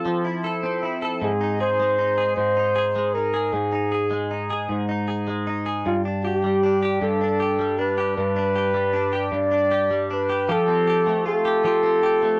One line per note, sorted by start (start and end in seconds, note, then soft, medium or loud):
0.00 0.63 C4 soft
0.00 0.41 F4 medium
0.00 0.43 A4 medium
0.05 1.29 F3 medium
0.25 0.82 E4 soft
0.44 1.01 A4 medium
0.63 4.13 C4 soft
0.83 1.29 E4 soft
1.02 1.29 A4 medium
1.21 2.36 G#2 medium
1.21 1.58 G#4 medium
1.41 1.97 D#4 soft
1.60 2.17 G#4 medium
1.60 2.34 C5 medium
1.80 2.95 G#3 soft
1.98 2.56 D#4 soft
2.18 2.74 G#4 medium
2.36 3.52 G#2 medium
2.36 3.15 C5 medium
2.57 3.14 D#4 soft
2.76 3.32 G#4 medium
2.96 4.09 G#3 medium
3.14 3.71 D#4 soft
3.14 3.55 A#4 medium
3.34 3.91 G#4 medium
3.53 4.68 G#2 medium
3.53 4.69 G#4 medium
3.72 4.30 D#4 medium
3.92 4.49 G#4 medium
4.11 5.26 G#3 medium
4.31 4.88 D#4 soft
4.50 5.07 G#4 medium
4.69 5.85 G#2 medium
4.89 5.46 D#4 soft
5.08 5.65 G#4 medium
5.28 5.93 G#3 medium
5.47 5.93 D#4 medium
5.66 5.93 G#4 medium
5.86 7.00 G2 medium
5.86 6.02 F4 medium
6.05 6.62 D4 soft
6.24 6.97 G4 medium
6.24 6.82 G4 medium
6.44 7.59 G3 medium
6.63 7.20 D4 soft
6.83 7.40 G4 medium
7.02 8.16 G2 medium
7.02 7.80 A4 medium
7.21 7.78 D4 soft
7.40 7.98 G4 medium
7.59 8.74 G3 medium
7.79 8.35 D4 medium
7.79 8.17 B4 medium
7.98 8.55 G4 medium
8.17 9.31 G2 medium
8.17 9.29 B4 medium
8.36 8.92 D4 soft
8.56 9.12 G4 medium
8.74 9.90 G3 medium
8.93 9.50 D4 soft
9.13 9.71 G4 medium
9.32 10.56 G2 medium
9.32 10.07 D5 medium
9.51 10.09 D4 soft
9.71 10.29 G4 medium
9.91 11.06 G3 soft
10.11 10.56 D4 soft
10.11 10.53 B4 medium
10.30 10.49 G4 medium
10.49 11.63 F3 medium
10.49 10.87 G4 medium
10.49 11.27 A4 loud
10.68 11.83 C4 medium
10.87 11.45 G4 medium
11.07 12.21 A3 medium
11.26 12.40 F4 medium
11.26 12.40 A4 loud
11.45 11.65 G4 medium
11.64 12.40 F3 medium
11.64 12.03 G4 medium
11.83 12.40 C4 medium
12.03 12.40 G4 medium
12.22 12.40 A3 medium